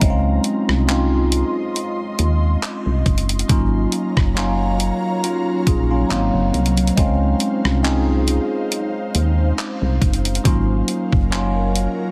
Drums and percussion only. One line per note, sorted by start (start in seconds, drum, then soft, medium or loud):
0.01 kick loud
0.01 closed hi-hat medium
0.44 closed hi-hat medium
0.69 cross-stick medium
0.89 clap loud
0.89 closed hi-hat medium
1.32 closed hi-hat medium
1.76 closed hi-hat medium
2.19 closed hi-hat medium
2.63 clap loud
2.63 closed hi-hat medium
3.06 kick medium
3.06 closed hi-hat soft
3.18 closed hi-hat medium
3.29 closed hi-hat medium
3.39 closed hi-hat medium
3.49 kick loud
3.49 closed hi-hat medium
3.92 closed hi-hat medium
4.17 kick medium
4.17 cross-stick medium
4.37 clap loud
4.37 closed hi-hat medium
4.80 closed hi-hat medium
5.24 closed hi-hat medium
5.67 kick loud
5.67 closed hi-hat medium
6.11 clap loud
6.11 closed hi-hat medium
6.54 closed hi-hat soft
6.66 closed hi-hat medium
6.77 closed hi-hat medium
6.87 closed hi-hat medium
6.97 kick loud
6.97 closed hi-hat medium
7.40 closed hi-hat medium
7.65 cross-stick medium
7.84 clap loud
7.84 closed hi-hat medium
8.28 closed hi-hat medium
8.72 closed hi-hat medium
9.15 closed hi-hat medium
9.59 clap loud
9.59 closed hi-hat medium
10.02 kick medium
10.02 closed hi-hat soft
10.13 closed hi-hat medium
10.25 closed hi-hat medium
10.35 closed hi-hat medium
10.45 kick loud
10.45 closed hi-hat medium
10.88 closed hi-hat medium
11.13 kick medium
11.32 clap loud
11.32 closed hi-hat medium
11.76 closed hi-hat medium